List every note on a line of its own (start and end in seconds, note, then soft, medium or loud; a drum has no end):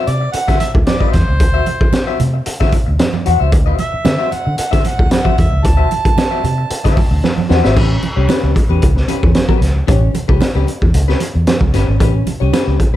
0.07 0.27 C3 medium
0.07 0.31 D5 loud
0.07 muted clean electric guitar stroke soft
0.07 closed hi-hat medium
0.21 muted clean electric guitar stroke medium
0.32 0.58 F#5 loud
0.32 muted clean electric guitar stroke soft
0.32 muted fingered electric bass stroke soft
0.32 closed hi-hat medium
0.48 0.58 D3 loud
0.48 0.59 F#4 medium
0.48 0.59 C5 medium
0.48 0.60 E5 medium
0.48 kick medium
0.48 snare soft
0.48 closed hi-hat soft
0.60 0.72 E5 loud
0.60 muted clean electric guitar stroke soft
0.60 closed hi-hat medium
0.60 muted conga soft
0.74 0.84 D2 medium
0.74 muted clean electric guitar stroke medium
0.74 kick loud
0.87 1.11 D5 loud
0.87 muted clean electric guitar stroke soft
0.87 snare loud
0.87 closed hi-hat medium
0.87 high conga medium
1.00 1.12 F#4 medium
1.00 1.12 C5 medium
1.00 1.13 E5 medium
1.00 kick medium
1.00 high conga medium
1.12 1.24 E2 medium
1.12 2.15 C5 loud
1.12 muted clean electric guitar stroke soft
1.12 kick medium
1.12 snare soft
1.12 closed hi-hat medium
1.28 1.40 C#2 medium
1.28 muted clean electric guitar stroke soft
1.40 1.60 D2 loud
1.40 muted clean electric guitar stroke soft
1.40 kick loud
1.40 closed hi-hat medium
1.54 1.65 F#4 medium
1.54 1.66 C5 medium
1.54 1.66 E5 medium
1.66 muted clean electric guitar stroke soft
1.66 closed hi-hat medium
1.66 muted conga medium
1.81 muted clean electric guitar stroke soft
1.81 muted fingered electric bass stroke soft
1.81 kick loud
1.93 muted clean electric guitar stroke soft
1.93 snare loud
1.93 closed hi-hat medium
1.93 high conga medium
2.07 2.19 F#4 medium
2.07 2.19 C5 medium
2.07 2.20 E5 medium
2.20 2.40 C3 medium
2.20 muted clean electric guitar stroke soft
2.20 closed hi-hat medium
2.20 low conga medium
2.34 muted clean electric guitar stroke medium
2.46 muted clean electric guitar stroke soft
2.46 muted fingered electric bass stroke soft
2.46 closed hi-hat medium
2.60 2.70 D3 loud
2.60 2.71 F#4 medium
2.60 2.72 C5 medium
2.60 2.72 E5 medium
2.60 kick medium
2.60 snare soft
2.72 muted clean electric guitar stroke soft
2.72 kick medium
2.72 closed hi-hat medium
2.72 muted conga soft
2.86 2.97 D2 medium
2.86 muted clean electric guitar stroke medium
2.99 muted clean electric guitar stroke soft
2.99 snare loud
2.99 closed hi-hat medium
2.99 high conga medium
3.13 muted clean electric guitar stroke soft
3.13 high conga medium
3.26 3.37 E2 loud
3.26 3.40 F#4 medium
3.26 3.39 C5 medium
3.26 3.39 F#5 medium
3.26 closed hi-hat medium
3.40 3.50 C#2 medium
3.40 3.51 F#4 medium
3.40 3.51 C5 medium
3.40 3.52 E5 medium
3.52 3.72 D2 loud
3.52 muted clean electric guitar stroke soft
3.52 kick loud
3.52 closed hi-hat medium
3.66 3.77 F#4 medium
3.66 3.77 C5 medium
3.66 3.78 E5 medium
3.78 4.34 E5 loud
3.78 muted clean electric guitar stroke soft
3.78 closed hi-hat medium
3.78 muted conga medium
3.92 muted clean electric guitar stroke soft
3.92 muted fingered electric bass stroke soft
4.04 4.16 D3 loud
4.04 muted clean electric guitar stroke soft
4.04 snare loud
4.04 closed hi-hat loud
4.04 high conga medium
4.18 4.29 F#4 medium
4.18 4.30 C5 medium
4.18 4.30 E5 medium
4.31 4.57 F#5 loud
4.31 muted clean electric guitar stroke soft
4.31 muted fingered electric bass stroke soft
4.31 closed hi-hat medium
4.31 muted conga soft
4.45 4.56 D3 medium
4.45 muted clean electric guitar stroke medium
4.57 4.71 F#5 loud
4.57 muted clean electric guitar stroke soft
4.57 muted fingered electric bass stroke medium
4.57 closed hi-hat loud
4.71 4.82 D3 medium
4.71 4.82 F#4 medium
4.71 4.83 C5 medium
4.71 4.83 E5 medium
4.71 4.87 E5 medium
4.71 kick medium
4.71 snare soft
4.71 closed hi-hat medium
4.84 5.12 F#5 loud
4.84 muted clean electric guitar stroke soft
4.84 closed hi-hat medium
4.84 muted conga soft
4.97 5.08 D2 medium
4.97 muted clean electric guitar stroke soft
4.97 kick medium
5.10 5.37 F#5 loud
5.10 muted clean electric guitar stroke soft
5.10 snare loud
5.10 closed hi-hat medium
5.10 high conga medium
5.24 5.36 F#4 medium
5.24 5.36 C5 medium
5.24 5.37 E5 medium
5.24 kick medium
5.24 high conga medium
5.37 5.49 E2 medium
5.37 5.66 E5 loud
5.37 muted clean electric guitar stroke soft
5.37 kick medium
5.37 closed hi-hat medium
5.51 5.65 C#2 loud
5.51 muted clean electric guitar stroke medium
5.63 5.84 D2 loud
5.63 7.50 A5 loud
5.63 muted clean electric guitar stroke soft
5.63 kick loud
5.63 closed hi-hat medium
5.77 5.89 F#4 medium
5.77 5.90 C5 medium
5.77 5.90 E5 medium
5.90 muted clean electric guitar stroke soft
5.90 closed hi-hat medium
5.90 muted conga medium
6.05 muted clean electric guitar stroke soft
6.05 muted fingered electric bass stroke medium
6.05 kick loud
6.05 closed hi-hat medium
6.17 muted clean electric guitar stroke soft
6.17 snare loud
6.17 closed hi-hat medium
6.17 high conga medium
6.31 6.42 F#4 medium
6.31 6.43 C5 medium
6.31 6.43 E5 medium
6.43 6.64 C3 loud
6.43 muted clean electric guitar stroke soft
6.43 closed hi-hat medium
6.43 low conga medium
6.58 muted clean electric guitar stroke medium
6.70 muted clean electric guitar stroke soft
6.70 muted fingered electric bass stroke soft
6.70 closed hi-hat loud
6.84 6.94 D3 loud
6.84 6.96 F#4 medium
6.84 6.96 C5 medium
6.84 6.97 E5 loud
6.84 kick medium
6.84 snare soft
6.84 closed hi-hat medium
6.97 muted clean electric guitar stroke soft
6.97 kick loud
6.97 open hi-hat medium
6.97 muted conga soft
7.11 7.20 D2 medium
7.11 muted clean electric guitar stroke soft
7.23 muted clean electric guitar stroke soft
7.23 snare medium
7.23 high conga medium
7.36 muted clean electric guitar stroke medium
7.36 high conga medium
7.49 7.60 E2 loud
7.49 7.64 F#4 medium
7.49 7.63 C5 medium
7.49 7.63 F#5 medium
7.49 snare medium
7.63 7.74 G#1 loud
7.63 7.76 F#4 medium
7.63 7.76 C5 medium
7.63 7.79 E5 medium
7.63 snare loud
7.76 7.96 A1 loud
7.76 7.97 C#4 loud
7.76 7.89 G4 medium
7.76 7.88 B4 loud
7.76 kick loud
7.76 crash loud
7.90 muted clean electric guitar stroke soft
8.02 muted clean electric guitar stroke soft
8.02 closed hi-hat medium
8.02 muted conga medium
8.16 8.26 C2 medium
8.16 8.28 C#4 medium
8.16 8.28 G4 medium
8.16 8.30 C#5 medium
8.29 8.50 C#4 medium
8.29 8.50 G4 medium
8.29 8.51 B4 loud
8.29 snare loud
8.29 closed hi-hat medium
8.29 high conga medium
8.43 8.53 C#2 medium
8.55 muted clean electric guitar stroke soft
8.55 kick medium
8.55 closed hi-hat medium
8.55 muted conga soft
8.69 8.79 E2 medium
8.69 8.86 C#4 medium
8.69 8.86 G4 medium
8.69 8.85 B4 medium
8.82 9.02 C#2 medium
8.82 kick loud
8.82 closed hi-hat medium
8.96 muted clean electric guitar stroke medium
8.96 snare soft
9.08 9.29 C#4 medium
9.08 9.22 G4 medium
9.08 9.21 B4 medium
9.08 closed hi-hat medium
9.08 muted conga medium
9.22 9.32 E2 loud
9.22 muted clean electric guitar stroke soft
9.22 kick loud
9.35 muted clean electric guitar stroke soft
9.35 snare loud
9.35 closed hi-hat medium
9.35 high conga medium
9.48 9.60 C#4 medium
9.48 9.60 G4 medium
9.48 9.61 B4 loud
9.48 kick medium
9.48 high conga medium
9.61 9.81 C#2 medium
9.61 muted clean electric guitar stroke soft
9.61 snare soft
9.61 closed hi-hat medium
9.75 muted clean electric guitar stroke medium
9.87 10.08 A1 loud
9.87 10.09 C#4 medium
9.87 10.01 G4 loud
9.87 10.02 C#5 loud
9.87 kick loud
9.87 closed hi-hat medium
10.02 muted clean electric guitar stroke soft
10.14 muted clean electric guitar stroke soft
10.14 closed hi-hat medium
10.14 muted conga medium
10.28 10.38 C2 medium
10.28 10.40 C#4 medium
10.28 10.41 G4 medium
10.28 10.41 B4 medium
10.28 kick loud
10.41 muted clean electric guitar stroke soft
10.41 snare loud
10.41 closed hi-hat medium
10.41 high conga loud
10.55 10.65 C#2 medium
10.55 10.66 C#4 medium
10.55 10.67 G4 medium
10.55 10.68 B4 medium
10.67 muted clean electric guitar stroke soft
10.67 closed hi-hat medium
10.67 muted conga soft
10.82 10.91 E2 medium
10.82 muted clean electric guitar stroke soft
10.82 kick medium
10.94 11.14 C#2 loud
10.94 muted clean electric guitar stroke soft
10.94 closed hi-hat loud
11.08 11.20 C#4 medium
11.08 11.20 G4 medium
11.08 11.21 B4 loud
11.08 snare soft
11.20 muted clean electric guitar stroke soft
11.20 closed hi-hat medium
11.20 muted conga soft
11.35 11.44 E2 medium
11.35 muted clean electric guitar stroke soft
11.47 muted clean electric guitar stroke soft
11.47 snare loud
11.47 closed hi-hat medium
11.47 high conga medium
11.61 11.70 C#2 loud
11.61 muted clean electric guitar stroke medium
11.61 kick medium
11.61 high conga medium
11.74 11.84 G1 loud
11.74 11.95 C#4 medium
11.74 11.88 G4 medium
11.74 11.87 B4 loud
11.74 snare soft
11.74 closed hi-hat medium
11.88 11.97 G#1 loud
11.88 muted clean electric guitar stroke soft
12.00 12.20 A1 loud
12.00 12.21 C#4 loud
12.00 12.14 G4 loud
12.00 12.13 B4 loud
12.00 kick loud
12.00 closed hi-hat medium
12.14 muted clean electric guitar stroke medium
12.26 muted clean electric guitar stroke soft
12.26 closed hi-hat medium
12.26 muted conga medium
12.40 12.50 C2 medium
12.40 12.52 C#4 medium
12.40 12.52 G4 medium
12.40 12.54 C#5 medium
12.53 12.74 C#4 medium
12.53 12.74 G4 loud
12.53 12.75 B4 medium
12.53 snare loud
12.53 closed hi-hat medium
12.53 high conga loud
12.68 12.77 C#2 medium
12.80 muted clean electric guitar stroke soft
12.80 kick medium
12.80 closed hi-hat medium